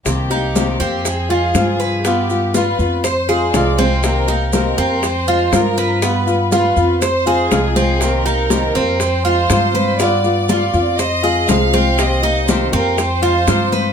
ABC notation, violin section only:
X:1
M:4/4
L:1/8
Q:1/4=121
K:Cm
V:1 name="Violin section"
G4 A4 | G2 =B2 c2 d c | B2 B2 c2 B2 | =B2 B2 c2 A2 |
B4 c4 | d4 e2 f2 | e2 c B c4 |]